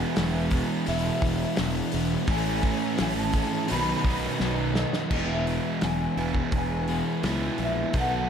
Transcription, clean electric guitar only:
0.00 0.88 G#5 loud
0.88 2.30 E5 medium
2.31 3.02 G#5 loud
3.02 3.13 G#5 loud
3.13 3.71 A5 loud
3.72 4.73 B5 loud
4.76 5.13 D#5 medium
5.13 5.24 D#5 medium
5.24 5.83 E5 medium
5.84 6.56 G#5 medium
6.57 7.63 G#5 medium
7.64 7.98 E5 medium
7.98 8.29 F#5 medium

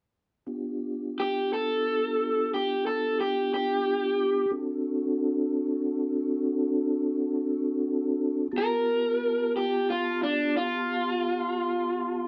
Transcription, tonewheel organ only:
0.46 4.46 B3 soft
0.46 4.46 D4 soft
0.46 4.46 F4 soft
0.46 4.46 G4 soft
4.51 8.48 C4 soft
4.51 8.48 D4 soft
4.51 8.48 F#4 soft
4.51 8.48 A4 soft
8.52 12.28 B3 medium
8.52 12.28 F4 medium
8.52 12.28 G4 medium
8.52 12.28 A5 medium

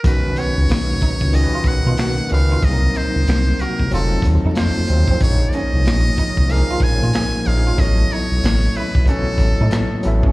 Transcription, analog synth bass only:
0.05 0.30 B1 loud
0.57 0.67 C#2 medium
0.70 0.95 B1 loud
1.22 1.47 C#2 medium
1.65 1.81 B1 loud
1.86 1.96 B2 loud
2.31 2.56 C#2 medium
2.63 2.88 C2 loud
3.15 3.25 C#2 medium
3.28 3.53 C2 loud
3.80 3.89 C2 loud
3.93 4.18 F1 loud
4.23 4.39 D#2 loud
4.45 4.70 F2 loud
4.90 5.05 D#2 loud
5.08 5.18 F2 loud
5.21 5.46 A#1 loud
5.73 5.87 C2 medium
5.86 6.11 A#1 loud
6.38 6.63 C2 medium
6.81 6.97 A#1 loud
7.02 7.12 A#2 loud
7.47 7.72 A#1 loud
7.79 8.04 A1 loud
8.31 8.41 B1 medium
8.43 8.69 A1 loud
8.96 9.21 B1 medium
9.39 9.55 A1 loud
9.61 9.70 A2 loud
10.05 10.30 A1 loud

